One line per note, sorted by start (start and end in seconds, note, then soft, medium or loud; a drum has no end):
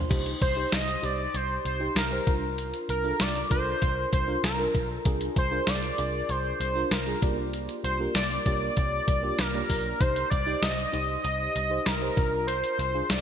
0.00 0.13 A#3 medium
0.00 0.13 D4 medium
0.00 0.13 F4 medium
0.00 0.11 C5 loud
0.09 0.33 C2 loud
0.09 0.53 D#4 medium
0.09 0.54 G4 medium
0.09 0.54 C5 medium
0.09 kick loud
0.09 closed hi-hat medium
0.09 crash loud
0.26 closed hi-hat medium
0.42 0.64 C2 loud
0.42 0.75 C5 loud
0.42 kick loud
0.42 closed hi-hat medium
0.56 1.00 D#4 medium
0.56 1.00 G4 medium
0.56 1.01 C5 medium
0.72 0.95 C2 loud
0.72 1.06 D#5 loud
0.72 snare loud
0.72 closed hi-hat loud
0.72 tambourine medium
0.88 closed hi-hat medium
1.02 1.26 C2 loud
1.02 1.75 D#4 medium
1.02 1.75 G4 medium
1.02 1.76 C5 medium
1.02 1.37 D5 loud
1.02 closed hi-hat medium
1.34 1.57 C2 loud
1.34 1.66 C5 loud
1.34 closed hi-hat medium
1.65 1.87 C2 loud
1.65 1.95 C5 medium
1.65 closed hi-hat medium
1.80 2.09 D#4 medium
1.80 2.10 G4 medium
1.80 2.10 C5 medium
1.96 2.18 C2 loud
1.96 2.40 A#4 medium
1.96 snare loud
1.96 closed hi-hat medium
1.96 tambourine medium
2.11 2.27 D#4 medium
2.11 2.27 G4 medium
2.11 2.27 C5 medium
2.26 2.72 C2 loud
2.26 2.99 D4 medium
2.26 2.99 F4 medium
2.26 3.00 A#4 medium
2.26 kick loud
2.26 closed hi-hat medium
2.58 closed hi-hat medium
2.74 closed hi-hat medium
2.89 3.11 C2 loud
2.89 3.22 A#4 medium
2.89 closed hi-hat medium
3.04 3.48 D4 medium
3.04 3.48 F4 medium
3.04 3.11 A4 medium
3.11 3.50 A#4 medium
3.20 3.42 C2 loud
3.20 3.51 D5 loud
3.20 snare loud
3.20 closed hi-hat loud
3.20 tambourine medium
3.35 closed hi-hat medium
3.50 3.73 C2 loud
3.50 4.23 D4 medium
3.50 4.23 F4 medium
3.50 4.23 A#4 medium
3.50 4.09 C5 loud
3.50 kick medium
3.50 closed hi-hat medium
3.82 4.04 C2 loud
3.82 kick medium
3.82 closed hi-hat medium
4.13 4.35 C2 medium
4.13 4.42 C5 medium
4.13 kick medium
4.13 closed hi-hat medium
4.27 4.57 D4 medium
4.27 4.57 F4 medium
4.27 4.57 A#4 medium
4.44 4.66 C2 loud
4.44 4.87 A#4 medium
4.44 snare loud
4.44 closed hi-hat medium
4.44 tambourine medium
4.58 5.02 D4 medium
4.58 5.02 F4 medium
4.58 5.03 A#4 medium
4.75 4.97 B1 medium
4.75 kick medium
4.75 closed hi-hat medium
5.05 5.28 C2 loud
5.05 5.49 D4 medium
5.05 5.49 F4 medium
5.05 5.49 G#4 loud
5.05 kick loud
5.05 closed hi-hat medium
5.21 closed hi-hat medium
5.36 5.59 C2 loud
5.36 5.70 C5 loud
5.36 kick loud
5.36 closed hi-hat medium
5.51 5.95 D4 medium
5.51 5.95 F4 medium
5.51 5.96 A#4 medium
5.67 5.90 C2 loud
5.67 6.32 D5 loud
5.67 snare loud
5.67 closed hi-hat loud
5.67 tambourine medium
5.83 closed hi-hat medium
5.98 6.21 C2 loud
5.98 6.70 D4 medium
5.98 6.71 F4 medium
5.98 6.71 G#4 medium
5.98 closed hi-hat medium
6.29 6.52 C2 loud
6.29 6.61 C5 loud
6.29 closed hi-hat medium
6.60 6.82 C2 loud
6.60 6.94 C5 medium
6.60 closed hi-hat medium
6.75 7.04 D4 medium
6.75 7.05 F4 medium
6.75 7.05 A#4 medium
6.91 7.14 C2 loud
6.91 7.38 A#4 medium
6.91 snare loud
6.91 closed hi-hat medium
6.91 tambourine medium
7.06 7.21 D4 medium
7.06 7.21 F4 medium
7.06 7.23 G#4 medium
7.22 7.67 C2 medium
7.22 7.94 A#3 medium
7.22 7.94 D4 medium
7.22 7.95 F4 medium
7.22 7.95 G4 medium
7.22 7.95 D5 medium
7.22 kick loud
7.22 closed hi-hat medium
7.53 closed hi-hat medium
7.69 closed hi-hat medium
7.84 8.06 C2 medium
7.84 7.98 C5 medium
7.84 closed hi-hat medium
7.99 8.43 A#3 medium
7.99 8.43 D4 medium
7.99 8.43 F4 medium
7.99 8.43 G4 medium
7.99 8.43 A#4 medium
8.15 8.37 C2 loud
8.15 8.44 D5 medium
8.15 snare loud
8.15 closed hi-hat loud
8.15 tambourine medium
8.30 closed hi-hat medium
8.46 8.68 C2 medium
8.46 9.18 A#3 medium
8.46 9.18 D4 medium
8.46 9.18 F4 medium
8.46 9.19 G4 medium
8.46 8.53 C#5 medium
8.46 9.40 D5 loud
8.46 kick medium
8.46 closed hi-hat medium
8.54 9.22 D5 medium
8.77 8.99 C2 loud
8.77 kick medium
8.77 closed hi-hat medium
9.08 9.30 C2 loud
9.08 kick medium
9.08 closed hi-hat medium
9.23 9.52 A#3 medium
9.23 9.52 D4 medium
9.23 9.52 F4 medium
9.23 9.52 G4 medium
9.23 9.52 D5 medium
9.38 9.61 C2 loud
9.38 10.02 A#4 loud
9.38 snare loud
9.38 closed hi-hat medium
9.38 tambourine medium
9.54 9.97 A#3 medium
9.54 9.97 D4 medium
9.54 9.97 F4 medium
9.54 9.98 G4 medium
9.54 9.98 D5 medium
9.70 9.92 B1 medium
9.70 kick medium
9.70 open hi-hat medium
10.00 10.23 C2 loud
10.00 10.44 D#4 medium
10.00 10.44 G4 medium
10.00 10.30 C5 loud
10.00 10.44 C5 medium
10.00 kick loud
10.00 closed hi-hat medium
10.16 closed hi-hat medium
10.30 10.54 C2 loud
10.30 10.63 D5 loud
10.30 kick medium
10.30 closed hi-hat medium
10.46 10.90 D#4 medium
10.46 10.90 G4 medium
10.46 10.90 D5 medium
10.61 10.85 C2 loud
10.61 11.23 D#5 loud
10.61 snare loud
10.61 closed hi-hat loud
10.61 tambourine medium
10.78 closed hi-hat medium
10.92 11.16 C2 medium
10.92 11.65 D#4 medium
10.92 11.65 G4 medium
10.92 11.66 C5 medium
10.92 closed hi-hat medium
11.23 11.47 C2 loud
11.23 11.87 D#5 loud
11.23 closed hi-hat medium
11.56 11.78 C2 loud
11.56 closed hi-hat medium
11.70 11.99 D#4 medium
11.70 11.99 G4 medium
11.70 12.00 C5 medium
11.86 12.09 C2 loud
11.86 12.47 A#4 loud
11.86 snare loud
11.86 closed hi-hat medium
11.86 tambourine medium
12.01 12.17 D#4 medium
12.01 12.17 G4 medium
12.01 12.17 C5 medium
12.16 12.62 C2 loud
12.16 12.89 D4 medium
12.16 12.89 F4 medium
12.16 12.89 A#4 medium
12.16 kick loud
12.16 closed hi-hat medium
12.47 13.11 C5 loud
12.47 closed hi-hat medium
12.64 closed hi-hat medium
12.79 13.01 C2 loud
12.79 closed hi-hat medium
12.94 13.21 D4 medium
12.94 13.21 F4 medium
12.94 13.21 G#4 medium
13.10 13.21 C2 loud
13.10 13.21 D5 loud
13.10 snare loud
13.10 closed hi-hat loud
13.10 tambourine medium